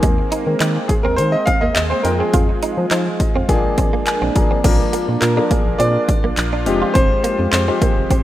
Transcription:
Already playing: grand piano D#3 A#3 C4 G#4, analog synth pad G#3 A#3 C4
0.03 fm bass D#2, clean electric guitar G#3, kick, closed hi-hat
0.18 muted clean electric guitar stroke
0.32 clean electric guitar D#4, closed hi-hat
0.47 fm bass D#3
0.60 fm bass D#3, clean electric guitar D#4, clap, closed hi-hat
0.76 muted clean electric guitar stroke
0.88 grand piano G#4, kick, closed hi-hat
1.03 fm bass D#2, clean electric guitar C4, grand piano A#4
1.16 fm bass D#3, grand piano C5, muted clean electric guitar stroke, closed hi-hat
1.32 grand piano D#5
1.46 clean electric guitar C4, grand piano F5, kick, closed hi-hat
1.61 fm bass D#2, clean electric guitar A#3, grand piano D#5
1.74 fm bass D#2, grand piano D#5, clap, closed hi-hat
1.90 clean electric guitar C4, grand piano C5
2.03 fm bass F2, grand piano F3 G#3 C4 A#4 G5, analog synth pad F3 F4, muted clean electric guitar stroke, closed hi-hat
2.19 clean electric guitar C4, grand piano G#4
2.34 fm bass F2, clean electric guitar F4, kick, closed hi-hat
2.49 muted clean electric guitar stroke
2.63 clean electric guitar D#4, closed hi-hat
2.78 fm bass F3
2.91 fm bass F3, clean electric guitar D#4, clap, closed hi-hat
3.07 muted clean electric guitar stroke
3.20 grand piano D#5, kick, closed hi-hat
3.35 fm bass F2, clean electric guitar C4, grand piano F5
3.49 fm bass A#1, grand piano F3 A#3 D4 G#4 G5, analog synth pad A#3 D4, muted clean electric guitar stroke, kick, closed hi-hat
3.78 fm bass G#1, clean electric guitar C4, kick, closed hi-hat
3.93 clean electric guitar A#3
4.07 grand piano G#5, clap, closed hi-hat
4.22 fm bass A#1, clean electric guitar C4
4.35 fm bass G1, grand piano F3 A#3 D4 G#4 A#5, muted clean electric guitar stroke, kick, closed hi-hat
4.51 fm bass G#1, clean electric guitar C4
4.64 fm bass A#1, grand piano F3 A#3 D4 A#4, analog synth pad A#3 D4 F4, clean electric guitar C4, kick, closed hi-hat, crash
4.93 clean electric guitar A#3, closed hi-hat
5.08 fm bass A#2, muted clean electric guitar stroke
5.20 fm bass A#2, grand piano A#4, muted clean electric guitar stroke, clap, closed hi-hat
5.37 grand piano F3 A#3 D4 A#4, clean electric guitar D4
5.51 grand piano F3 A#3 D4 G#4, clean electric guitar A#3, kick, closed hi-hat
5.66 fm bass A#1
5.79 fm bass A#2, clean electric guitar C4, grand piano D5, closed hi-hat
6.09 muted clean electric guitar stroke, kick, closed hi-hat
6.24 fm bass A#1, clean electric guitar A#3
6.37 fm bass A#1, clap, closed hi-hat
6.53 clean electric guitar D4
6.66 fm bass F1, grand piano F3 G#3 C4 G4, analog synth pad G#3 G4, muted clean electric guitar stroke, closed hi-hat
6.82 clean electric guitar F4
6.94 fm bass F1, clean electric guitar C4, grand piano C5, kick, closed hi-hat
7.24 clean electric guitar A#3, closed hi-hat
7.39 fm bass F2, muted clean electric guitar stroke
7.51 fm bass F2, grand piano C5, muted clean electric guitar stroke, clap, closed hi-hat
7.68 grand piano F3 G#3 C4 G4, clean electric guitar C4
7.82 grand piano F3 G#3 C4 G4, clean electric guitar A#3, kick, closed hi-hat
7.97 fm bass F1
8.10 fm bass G#1, clean electric guitar C4, kick, closed hi-hat

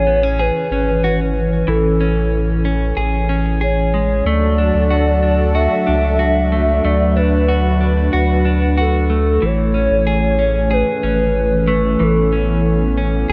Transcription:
Already playing: sub bass A1, clean electric guitar E3 G#4, analog synth pad E3 C#4, soft synth lead C#5
0.07 clean electric guitar B3
0.23 clean electric guitar C#4
0.39 clean electric guitar G#4, soft synth lead B4
0.71 sub bass G#1, clean electric guitar C#4
1.04 clean electric guitar F#4
1.68 sub bass A1, clean electric guitar E3, soft synth lead A4
2.01 clean electric guitar C#4
2.65 clean electric guitar C#4
2.97 sub bass A1, clean electric guitar G#4
3.29 clean electric guitar C#4
3.61 clean electric guitar G#4, soft synth lead C#5
3.94 clean electric guitar G#3
4.25 sub bass D2, analog synth pad F#3 D4 F#4 A4, clean electric guitar A3, soft synth lead D5
4.58 clean electric guitar D4
4.75 sub bass D2
4.91 clean electric guitar F#4
5.23 clean electric guitar D4
5.54 clean electric guitar F#4, soft synth lead E5
5.87 sub bass C#2, clean electric guitar D4
6.19 clean electric guitar F#4
6.52 clean electric guitar A3
6.84 sub bass D2, clean electric guitar A3, analog synth pad B4, soft synth lead D5
7.16 clean electric guitar D4, soft synth lead B4
7.48 clean electric guitar F#4
7.81 clean electric guitar D4
8.13 sub bass D2, clean electric guitar F#4
8.45 clean electric guitar D4
8.78 clean electric guitar F#4, soft synth lead A4
9.10 clean electric guitar A3
9.42 sub bass A1, clean electric guitar E3, analog synth pad E3 A3 C#4, soft synth lead C#5
9.74 clean electric guitar C#4
9.91 sub bass A1
10.07 clean electric guitar G#4
10.39 clean electric guitar C#4
10.71 clean electric guitar G#4, soft synth lead B4
11.03 sub bass G#1, clean electric guitar C#4
11.68 clean electric guitar A3
12.00 sub bass A1, clean electric guitar E3, analog synth pad B3, soft synth lead A4
12.33 clean electric guitar C#4
12.98 clean electric guitar C#4
13.29 sub bass A1, clean electric guitar G#4

